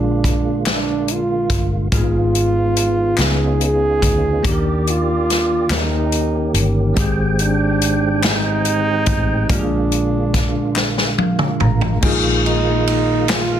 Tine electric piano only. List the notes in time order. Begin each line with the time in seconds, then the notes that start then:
Already playing: A#2 G#3 A#3 D4 F4 G#4
1.92 G#2 G#3 A#3 D#4 F4 G#4
1.99 B3
3.18 C#3 B3 C#4 D#4 F4 G#4
4.42 D#3 A#3 D4 D#4 G4 A4
4.51 A#4
5.71 D#3 A#3 C#4 D#4 G4 A#4
6.94 G#2 D#3 G#3 C4
6.99 G4 G#4
9.49 A#2 G#3 A#3 D4 F4 G4
9.59 G#4
11.19 F5
11.61 A#5
12.01 A#2 G#3 A#3 D#4 F4
12.05 G#4